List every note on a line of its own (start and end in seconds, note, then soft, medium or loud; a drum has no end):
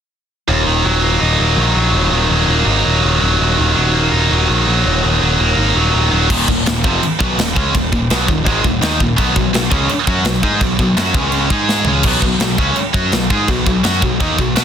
0.48 0.65 D#1 medium
0.48 1.93 D#2 medium
0.67 0.83 D#1 medium
0.67 1.57 D#3 medium
0.84 1.17 D#1 medium
0.84 1.38 F#3 medium
1.02 2.47 A#3 medium
1.21 1.37 D#1 medium
1.21 2.66 D#4 medium
1.38 1.56 D#1 medium
1.38 1.74 F#3 medium
1.57 1.73 A#1 medium
1.57 2.10 D#3 medium
1.74 1.92 A#1 medium
1.74 2.29 F#3 medium
1.93 2.09 D#1 medium
1.93 3.39 D#2 medium
2.10 2.28 D#1 medium
2.10 3.01 D#3 medium
2.29 2.46 D#1 medium
2.29 2.84 F#3 medium
2.47 2.64 D#1 medium
2.47 3.93 A#3 medium
2.66 2.82 G#1 medium
2.66 4.11 D#4 medium
2.84 3.02 D#1 medium
2.84 3.21 F#3 medium
3.02 3.19 D#1 medium
3.02 3.56 D#3 medium
3.21 3.37 D#1 medium
3.21 3.74 F#3 medium
3.40 3.56 D#1 medium
3.40 4.84 D#2 medium
3.57 3.75 D#1 medium
3.57 4.47 D#3 medium
3.75 4.08 D#1 medium
3.75 4.30 F#3 medium
3.93 5.38 A#3 medium
4.11 4.28 D#1 medium
4.11 5.02 D#4 medium
4.30 4.47 D#1 medium
4.30 4.66 F#3 medium
4.47 4.65 A#1 medium
4.47 5.01 D#3 medium
4.67 4.83 A#1 medium
4.67 5.20 F#3 medium
4.84 5.01 D#1 medium
4.84 5.75 D#2 medium
5.02 5.19 D#1 medium
5.02 5.92 D#3 medium
5.21 5.37 D#1 medium
5.21 5.74 F#3 medium
5.39 5.55 D#1 medium
5.39 6.29 A#3 medium
5.57 5.73 G#1 medium
5.57 6.30 D#4 medium
5.75 5.91 D#1 medium
5.75 6.11 F#3 medium
5.93 6.10 D#1 medium
5.93 6.29 D#3 medium
6.12 6.28 D#1 medium
6.12 6.30 F#3 medium
6.29 6.46 D#1 medium
6.29 6.47 D#2 medium
6.29 6.47 A#2 loud
6.29 6.47 D#3 loud
6.29 kick loud
6.29 crash loud
6.29 china medium
6.48 6.65 D#1 medium
6.48 6.62 D#2 medium
6.48 6.63 A#2 medium
6.48 kick medium
6.66 6.83 D#1 medium
6.66 6.80 D#2 medium
6.66 6.80 A#2 medium
6.66 snare loud
6.66 china medium
6.83 7.01 F1 medium
6.83 7.01 F2 medium
6.83 7.01 C3 loud
6.83 7.01 F3 loud
6.83 kick loud
7.01 muted distorted electric guitar stroke medium
7.01 muted picked electric bass stroke soft
7.01 china medium
7.19 7.37 B1 loud
7.19 7.37 B2 medium
7.19 7.37 F#3 medium
7.19 7.37 B3 medium
7.19 kick loud
7.37 7.54 D#1 medium
7.37 7.52 D#2 medium
7.37 7.53 A#2 medium
7.37 snare loud
7.37 china medium
7.56 7.73 C#2 medium
7.56 7.73 C#3 medium
7.56 7.74 G#3 loud
7.56 7.74 C#4 medium
7.56 kick loud
7.75 7.91 D#1 medium
7.75 7.89 D#2 medium
7.75 7.89 A#2 medium
7.75 kick loud
7.75 china medium
7.92 8.09 D#1 medium
7.92 8.06 D#2 medium
7.92 8.06 A#2 medium
7.92 kick medium
8.10 8.27 B1 medium
8.10 8.27 B2 loud
8.10 8.28 F#3 medium
8.10 8.28 B3 medium
8.10 snare loud
8.10 china medium
8.28 8.45 D#1 medium
8.28 8.42 D#2 medium
8.28 8.42 A#2 medium
8.28 kick loud
8.45 8.63 G#1 loud
8.45 8.63 G#2 loud
8.45 8.63 D#3 loud
8.45 8.63 G#3 loud
8.45 kick loud
8.45 china medium
8.64 8.80 D#1 medium
8.64 8.78 D#2 medium
8.64 8.78 A#2 medium
8.64 kick medium
8.81 8.98 D#2 medium
8.81 8.98 D#3 loud
8.81 8.99 A#3 loud
8.81 9.00 D#4 loud
8.81 snare loud
8.81 china medium
8.98 9.17 D#1 medium
8.98 9.13 D#2 medium
8.98 9.13 A#2 medium
8.98 kick medium
9.16 9.35 B1 loud
9.16 9.33 B2 loud
9.16 9.34 F#3 loud
9.16 9.35 B3 loud
9.16 kick loud
9.16 china medium
9.34 9.53 B1 medium
9.34 9.49 B2 medium
9.34 9.50 F#3 medium
9.34 kick medium
9.53 9.71 B1 medium
9.53 9.68 B2 medium
9.53 9.68 F#3 medium
9.53 snare loud
9.53 china medium
9.70 9.88 C#2 loud
9.70 9.88 C#3 loud
9.70 9.89 G#3 loud
9.70 9.89 C#4 loud
9.70 kick loud
9.89 muted picked electric bass stroke soft
9.89 muted distorted electric guitar stroke medium
9.89 china medium
10.07 10.23 F#2 medium
10.07 10.25 F#3 medium
10.07 10.25 C#4 medium
10.07 10.25 F#4 loud
10.07 kick loud
10.24 10.41 B1 medium
10.24 10.40 B2 medium
10.24 10.40 F#3 medium
10.24 snare loud
10.24 china medium
10.43 10.60 G#2 medium
10.43 10.61 G#3 medium
10.43 10.61 D#4 medium
10.43 10.61 G#4 medium
10.43 kick loud
10.61 10.78 B1 medium
10.61 10.76 B2 medium
10.61 10.76 F#3 medium
10.61 kick medium
10.61 china medium
10.79 10.96 B1 medium
10.79 10.94 B2 medium
10.79 10.94 F#3 medium
10.79 kick medium
10.97 11.14 F#2 loud
10.97 11.14 F#3 medium
10.97 11.15 C#4 loud
10.97 11.15 F#4 loud
10.97 snare loud
10.97 china medium
11.14 11.48 C#2 medium
11.14 11.51 C#3 medium
11.14 11.50 G#3 medium
11.14 11.51 C#4 loud
11.14 kick loud
11.32 china medium
11.50 11.84 G#2 medium
11.50 11.86 G#3 medium
11.50 11.87 D#4 medium
11.50 11.87 G#4 medium
11.50 kick loud
11.69 snare medium
11.85 12.03 C#2 medium
11.85 12.04 C#3 medium
11.85 12.05 G#3 medium
11.85 12.05 C#4 medium
11.85 floor tom medium
12.03 12.21 B1 loud
12.03 12.22 B2 medium
12.03 12.22 F#3 medium
12.03 12.23 B3 medium
12.03 kick loud
12.03 crash loud
12.03 china medium
12.22 12.38 B1 medium
12.22 12.37 B2 medium
12.22 12.38 F#3 medium
12.22 kick medium
12.39 12.57 B1 medium
12.39 12.55 B2 medium
12.39 12.56 F#3 medium
12.39 snare loud
12.39 china medium
12.58 12.75 C#2 loud
12.58 12.76 C#3 medium
12.58 12.76 G#3 medium
12.58 12.76 C#4 loud
12.58 kick loud
12.76 muted picked electric bass stroke soft
12.76 muted distorted electric guitar stroke medium
12.76 china medium
12.93 13.11 F#2 medium
12.93 13.12 F#3 medium
12.93 13.12 C#4 medium
12.93 13.12 F#4 medium
12.93 kick loud
13.12 13.29 B1 medium
13.12 13.27 B2 medium
13.12 13.27 F#3 medium
13.12 snare loud
13.12 china medium
13.30 13.47 G#2 medium
13.30 13.48 G#3 medium
13.30 13.48 D#4 medium
13.30 13.49 G#4 loud
13.30 kick loud
13.48 13.65 B1 medium
13.48 13.63 B2 medium
13.48 13.64 F#3 medium
13.48 kick medium
13.48 china medium
13.66 13.83 B1 medium
13.66 13.81 B2 medium
13.66 13.81 F#3 medium
13.66 kick medium
13.84 14.01 F#2 medium
13.84 14.02 F#3 medium
13.84 14.02 C#4 medium
13.84 14.02 F#4 medium
13.84 snare loud
13.84 china medium
14.02 14.19 B1 medium
14.02 14.17 B2 medium
14.02 14.17 F#3 medium
14.02 kick medium
14.20 14.37 D#2 medium
14.20 14.38 D#3 loud
14.20 14.38 A#3 loud
14.20 14.38 D#4 loud
14.20 kick loud
14.20 china medium
14.38 14.55 B1 medium
14.38 14.53 B2 medium
14.38 14.53 F#3 medium
14.38 kick loud
14.56 14.64 B2 medium
14.56 14.64 B3 loud
14.56 14.64 F#4 loud
14.56 14.64 B4 loud
14.56 snare loud
14.56 china medium